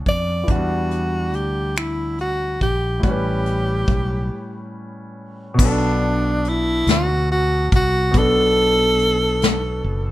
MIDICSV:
0, 0, Header, 1, 5, 480
1, 0, Start_track
1, 0, Key_signature, 2, "minor"
1, 0, Tempo, 851064
1, 272, Time_signature, 6, 3, 24, 8
1, 5704, End_track
2, 0, Start_track
2, 0, Title_t, "Tenor saxophone"
2, 0, Program_c, 0, 66
2, 48, Note_on_c, 0, 74, 106
2, 264, Note_off_c, 0, 74, 0
2, 283, Note_on_c, 0, 66, 82
2, 763, Note_on_c, 0, 67, 89
2, 772, Note_off_c, 0, 66, 0
2, 998, Note_off_c, 0, 67, 0
2, 1003, Note_on_c, 0, 64, 77
2, 1222, Note_off_c, 0, 64, 0
2, 1245, Note_on_c, 0, 66, 91
2, 1462, Note_off_c, 0, 66, 0
2, 1480, Note_on_c, 0, 67, 86
2, 1700, Note_off_c, 0, 67, 0
2, 1715, Note_on_c, 0, 67, 86
2, 2651, Note_off_c, 0, 67, 0
2, 3179, Note_on_c, 0, 62, 85
2, 3660, Note_on_c, 0, 64, 86
2, 3668, Note_off_c, 0, 62, 0
2, 3897, Note_on_c, 0, 66, 94
2, 3905, Note_off_c, 0, 64, 0
2, 4122, Note_off_c, 0, 66, 0
2, 4125, Note_on_c, 0, 66, 87
2, 4343, Note_off_c, 0, 66, 0
2, 4374, Note_on_c, 0, 66, 105
2, 4611, Note_on_c, 0, 69, 108
2, 4619, Note_off_c, 0, 66, 0
2, 5704, Note_off_c, 0, 69, 0
2, 5704, End_track
3, 0, Start_track
3, 0, Title_t, "Grand piano"
3, 0, Program_c, 1, 0
3, 0, Control_c, 1, 64, 127
3, 0, Note_on_c, 1, 47, 56
3, 0, Note_on_c, 1, 59, 53
3, 0, Note_on_c, 1, 62, 55
3, 0, Note_on_c, 1, 66, 63
3, 240, Note_off_c, 1, 47, 0
3, 246, Note_on_c, 1, 52, 51
3, 251, Note_off_c, 1, 59, 0
3, 261, Note_off_c, 1, 62, 0
3, 269, Note_on_c, 1, 62, 54
3, 272, Note_off_c, 1, 66, 0
3, 280, Control_c, 1, 64, 0
3, 291, Note_on_c, 1, 78, 53
3, 312, Note_on_c, 1, 55, 57
3, 373, Control_c, 1, 64, 127
3, 1677, Note_off_c, 1, 52, 0
3, 1688, Note_off_c, 1, 62, 0
3, 1690, Note_on_c, 1, 45, 54
3, 1699, Note_off_c, 1, 78, 0
3, 1704, Note_off_c, 1, 55, 0
3, 1712, Note_on_c, 1, 55, 51
3, 1720, Control_c, 1, 64, 0
3, 1732, Note_on_c, 1, 61, 55
3, 1752, Note_on_c, 1, 71, 64
3, 1816, Control_c, 1, 64, 127
3, 3119, Note_off_c, 1, 45, 0
3, 3126, Note_on_c, 1, 47, 65
3, 3130, Note_off_c, 1, 55, 0
3, 3140, Note_off_c, 1, 61, 0
3, 3145, Note_on_c, 1, 59, 61
3, 3150, Note_off_c, 1, 71, 0
3, 3159, Control_c, 1, 64, 0
3, 3168, Note_on_c, 1, 62, 52
3, 3187, Note_on_c, 1, 69, 70
3, 3261, Control_c, 1, 64, 127
3, 4557, Note_off_c, 1, 47, 0
3, 4566, Note_off_c, 1, 59, 0
3, 4576, Note_on_c, 1, 47, 68
3, 4578, Note_off_c, 1, 62, 0
3, 4587, Note_off_c, 1, 69, 0
3, 4594, Note_on_c, 1, 59, 60
3, 4616, Note_on_c, 1, 62, 57
3, 4639, Note_on_c, 1, 69, 69
3, 5704, Note_off_c, 1, 47, 0
3, 5704, Note_off_c, 1, 59, 0
3, 5704, Note_off_c, 1, 62, 0
3, 5704, Note_off_c, 1, 69, 0
3, 5704, End_track
4, 0, Start_track
4, 0, Title_t, "Fretless electric bass"
4, 0, Program_c, 2, 35
4, 37, Note_on_c, 2, 41, 74
4, 252, Note_off_c, 2, 41, 0
4, 273, Note_on_c, 2, 40, 94
4, 753, Note_off_c, 2, 40, 0
4, 753, Note_on_c, 2, 38, 80
4, 1450, Note_off_c, 2, 38, 0
4, 1476, Note_on_c, 2, 34, 75
4, 1692, Note_off_c, 2, 34, 0
4, 1715, Note_on_c, 2, 33, 107
4, 2171, Note_off_c, 2, 33, 0
4, 2191, Note_on_c, 2, 35, 73
4, 2420, Note_off_c, 2, 35, 0
4, 3153, Note_on_c, 2, 35, 110
4, 3850, Note_off_c, 2, 35, 0
4, 3875, Note_on_c, 2, 38, 86
4, 4331, Note_off_c, 2, 38, 0
4, 4357, Note_on_c, 2, 36, 97
4, 4572, Note_off_c, 2, 36, 0
4, 4596, Note_on_c, 2, 35, 114
4, 5532, Note_off_c, 2, 35, 0
4, 5552, Note_on_c, 2, 30, 94
4, 5704, Note_off_c, 2, 30, 0
4, 5704, End_track
5, 0, Start_track
5, 0, Title_t, "Drums"
5, 33, Note_on_c, 9, 42, 45
5, 35, Note_on_c, 9, 36, 78
5, 90, Note_off_c, 9, 42, 0
5, 92, Note_off_c, 9, 36, 0
5, 271, Note_on_c, 9, 36, 97
5, 272, Note_on_c, 9, 42, 61
5, 328, Note_off_c, 9, 36, 0
5, 328, Note_off_c, 9, 42, 0
5, 513, Note_on_c, 9, 42, 51
5, 570, Note_off_c, 9, 42, 0
5, 752, Note_on_c, 9, 42, 39
5, 808, Note_off_c, 9, 42, 0
5, 992, Note_on_c, 9, 42, 70
5, 1002, Note_on_c, 9, 26, 98
5, 1049, Note_off_c, 9, 42, 0
5, 1058, Note_off_c, 9, 26, 0
5, 1232, Note_on_c, 9, 42, 40
5, 1288, Note_off_c, 9, 42, 0
5, 1470, Note_on_c, 9, 42, 44
5, 1473, Note_on_c, 9, 36, 82
5, 1527, Note_off_c, 9, 42, 0
5, 1530, Note_off_c, 9, 36, 0
5, 1709, Note_on_c, 9, 42, 58
5, 1711, Note_on_c, 9, 36, 96
5, 1766, Note_off_c, 9, 42, 0
5, 1767, Note_off_c, 9, 36, 0
5, 1951, Note_on_c, 9, 42, 52
5, 2007, Note_off_c, 9, 42, 0
5, 2187, Note_on_c, 9, 36, 93
5, 2193, Note_on_c, 9, 42, 42
5, 2244, Note_off_c, 9, 36, 0
5, 2249, Note_off_c, 9, 42, 0
5, 3152, Note_on_c, 9, 36, 101
5, 3153, Note_on_c, 9, 49, 87
5, 3208, Note_off_c, 9, 36, 0
5, 3209, Note_off_c, 9, 49, 0
5, 3636, Note_on_c, 9, 42, 59
5, 3692, Note_off_c, 9, 42, 0
5, 3875, Note_on_c, 9, 42, 79
5, 3885, Note_on_c, 9, 38, 113
5, 3932, Note_off_c, 9, 42, 0
5, 3941, Note_off_c, 9, 38, 0
5, 4352, Note_on_c, 9, 42, 73
5, 4355, Note_on_c, 9, 36, 99
5, 4408, Note_off_c, 9, 42, 0
5, 4412, Note_off_c, 9, 36, 0
5, 4591, Note_on_c, 9, 42, 72
5, 4592, Note_on_c, 9, 36, 96
5, 4647, Note_off_c, 9, 42, 0
5, 4648, Note_off_c, 9, 36, 0
5, 5070, Note_on_c, 9, 42, 60
5, 5127, Note_off_c, 9, 42, 0
5, 5312, Note_on_c, 9, 42, 80
5, 5321, Note_on_c, 9, 38, 108
5, 5368, Note_off_c, 9, 42, 0
5, 5378, Note_off_c, 9, 38, 0
5, 5704, End_track
0, 0, End_of_file